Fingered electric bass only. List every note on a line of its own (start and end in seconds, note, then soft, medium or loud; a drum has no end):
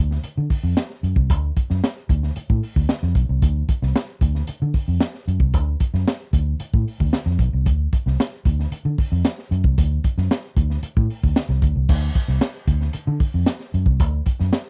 0.00 0.17 D2 loud
0.24 muted fingered electric bass stroke soft
0.38 0.47 D3 medium
0.64 0.74 F2 medium
1.03 1.13 F#2 medium
1.16 1.30 C2 medium
1.30 1.50 D2 loud
1.71 1.80 F#2 medium
2.10 2.29 D2 medium
2.37 muted fingered electric bass stroke soft
2.50 2.60 A2 medium
2.76 2.86 D2 loud
3.03 3.13 F2 loud
3.15 3.25 B1 medium
3.29 3.39 C2 medium
3.42 3.62 D2 loud
3.82 3.92 C2 medium
4.21 4.41 D2 loud
4.49 muted fingered electric bass stroke soft
4.62 4.72 D3 loud
4.88 4.98 F2 medium
5.28 5.38 F#2 medium
5.40 5.54 C2 medium
5.54 5.74 D2 loud
5.94 6.04 F#2 medium
6.33 6.53 D2 loud
6.60 muted fingered electric bass stroke soft
6.74 6.84 A2 medium
7.00 7.10 D2 medium
7.26 7.36 F2 loud
7.39 7.49 B1 medium
7.53 7.66 C2 medium
7.66 7.86 D2 loud
8.06 8.16 C2 medium
8.46 8.65 D2 medium
8.72 muted fingered electric bass stroke soft
8.85 8.95 D3 medium
9.12 9.22 F2 loud
9.51 9.61 F#2 medium
9.64 9.74 C2 medium
9.78 9.98 D2 loud
10.18 10.27 F#2 medium
10.57 10.77 D2 medium
10.83 muted fingered electric bass stroke soft
10.97 11.07 A2 loud
11.24 11.33 D2 medium
11.49 11.59 C2 loud
11.63 11.72 D2 medium
11.76 11.86 C2 medium
11.89 12.09 D2 loud
12.28 12.38 C2 medium
12.67 12.88 D2 medium
12.95 muted fingered electric bass stroke soft
13.07 13.17 D3 loud
13.34 13.44 F2 medium
13.74 13.84 F#2 medium
13.86 14.00 C2 medium
14.00 14.20 D2 loud
14.40 14.50 F#2 medium